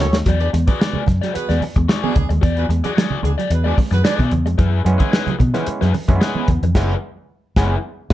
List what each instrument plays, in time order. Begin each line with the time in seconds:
0.00 fingered electric bass D2, horn section C#4 F#4 A4 C#5, muted overdriven electric guitar stroke, low conga
0.13 fingered electric bass D#2, clean electric guitar A3, muted overdriven electric guitar stroke, snare
0.26 fingered electric bass E2, clean electric guitar F#3, overdriven electric guitar F#4 G#4 D5, kick, closed hi-hat
0.40 horn section D4 G#4 B4 D5, closed hi-hat, muted conga
0.53 fingered electric bass E2, clean electric guitar G#3, muted overdriven electric guitar stroke, closed hi-hat
0.67 horn section B3 F#4 G#4 B4, overdriven electric guitar F#4 G#4 D5, muted clean electric guitar stroke, kick, closed hi-hat, high conga
0.79 overdriven electric guitar F#4 G#4 D5, snare, muted conga
0.93 clean electric guitar G#3, muted fingered electric bass stroke, muted conga, high conga, low conga
1.06 fingered electric bass F#2, muted overdriven electric guitar stroke, kick, snare, closed hi-hat, low conga
1.21 clean electric guitar F#3, overdriven electric guitar F#4 G#4 D5, snare, closed hi-hat
1.34 horn section B3 F#4 G#4 B4, muted overdriven electric guitar stroke, muted fingered electric bass stroke, closed hi-hat, muted conga
1.49 fingered electric bass E2, clean electric guitar G#3, overdriven electric guitar F#4 G#4 D5, snare, closed hi-hat, muted conga
1.62 muted overdriven electric guitar stroke, muted clean electric guitar stroke, open hi-hat, high conga
1.76 fingered electric bass E2, clean electric guitar G#3, muted overdriven electric guitar stroke, kick, closed hi-hat, high conga
1.88 overdriven electric guitar F#4 G#4 D5, snare
2.02 horn section G#3 B3 D4 G#4, clean electric guitar B3, muted conga, high conga
2.16 fingered electric bass D2, muted overdriven electric guitar stroke, kick, closed hi-hat, low conga
2.29 fingered electric bass D#2, clean electric guitar G#3, muted overdriven electric guitar stroke, closed hi-hat
2.41 fingered electric bass E2, clean electric guitar B3, overdriven electric guitar F#4 G#4 D5, kick, closed hi-hat, muted conga
2.57 horn section B3 F#4 G#4 B4, muted clean electric guitar stroke, closed hi-hat, muted conga
2.69 fingered electric bass E2, clean electric guitar G#3, muted overdriven electric guitar stroke, closed hi-hat
2.84 horn section G#3 B3 D4 G#4, overdriven electric guitar F#4 G#4 D5, closed hi-hat, high conga
2.95 clean electric guitar F#3, overdriven electric guitar F#4 G#4 D5, snare
3.11 muted fingered electric bass stroke, muted clean electric guitar stroke, muted conga, high conga, low conga
3.23 fingered electric bass D2, horn section G#3 B3 D4 G#4, muted overdriven electric guitar stroke, closed hi-hat, low conga
3.38 clean electric guitar F#3, overdriven electric guitar F#4 G#4 D5, closed hi-hat
3.50 fingered electric bass E2, horn section B3 F#4 G#4 B4, muted overdriven electric guitar stroke, muted clean electric guitar stroke, closed hi-hat, muted conga
3.64 clean electric guitar G#3, horn section D4 G#4 B4 D5, overdriven electric guitar F#4 G#4 D5
3.77 clean electric guitar G#3, muted overdriven electric guitar stroke, kick, open hi-hat, high conga
3.91 fingered electric bass F#2, horn section B3 F#4 G#4 B4, muted overdriven electric guitar stroke, snare, closed hi-hat, high conga
4.04 clean electric guitar F#3, horn section D4 G#4 B4 D5, overdriven electric guitar F#4 G#4 D5, snare, muted conga
4.19 fingered electric bass B2, kick, snare, closed hi-hat, muted conga, high conga
4.31 fingered electric bass E2, muted overdriven electric guitar stroke, muted clean electric guitar stroke, closed hi-hat, low conga
4.46 fingered electric bass F2, clean electric guitar G#3, muted overdriven electric guitar stroke, closed hi-hat
4.58 fingered electric bass F#2, clean electric guitar E3, overdriven electric guitar E4 G#4 B4, kick, closed hi-hat, muted conga
4.85 fingered electric bass F#2, clav E3 G#3 B3 C#4, clean electric guitar F#3, muted overdriven electric guitar stroke, closed hi-hat
4.98 overdriven electric guitar E4 G#4 B4, kick, closed hi-hat, high conga
5.11 overdriven electric guitar E4 G#4 B4, snare
5.27 clean electric guitar F#3, muted fingered electric bass stroke, closed hi-hat, muted conga, high conga, low conga
5.39 fingered electric bass B2, muted overdriven electric guitar stroke, muted clean electric guitar stroke, kick, closed hi-hat, low conga
5.54 clav E3 G#3 B3 C#4, clean electric guitar E3, overdriven electric guitar E4 G#4 B4, snare, closed hi-hat
5.66 muted overdriven electric guitar stroke, muted fingered electric bass stroke, closed hi-hat
5.81 fingered electric bass F#2, clean electric guitar F#3, overdriven electric guitar E4 G#4 B4, snare, muted conga
5.94 muted overdriven electric guitar stroke, muted clean electric guitar stroke, open hi-hat, high conga
6.08 fingered electric bass F#2, clav E3 G#3 A3 C#4, clean electric guitar F#3, muted overdriven electric guitar stroke, kick, closed hi-hat, high conga
6.16 clav B3
6.21 overdriven electric guitar E4 G#4 B4, snare, muted conga
6.35 clean electric guitar B3, high conga
6.48 fingered electric bass E2, muted overdriven electric guitar stroke, kick, closed hi-hat, low conga
6.63 fingered electric bass F2, clean electric guitar E3, muted overdriven electric guitar stroke, closed hi-hat
6.75 fingered electric bass F#1, clav E3 G#3 B3 C#4, overdriven electric guitar E4 G#4 B4, kick, snare, crash
7.56 fingered electric bass F#1, clav E3 G#3 B3 C#4, overdriven electric guitar E4 G#4 B4, kick, snare